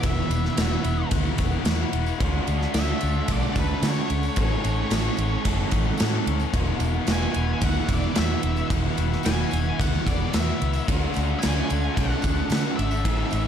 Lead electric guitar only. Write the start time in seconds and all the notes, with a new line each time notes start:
0.06 E5
2.75 E5
3.32 D5
3.60 B4
3.89 C#5
4.42 C#5
7.12 G#5
7.65 F#5
7.94 D5
8.18 E5
9.25 G#5
9.81 F#5
10.06 D5
10.35 E5
11.40 G#5
11.96 F#5
12.77 E5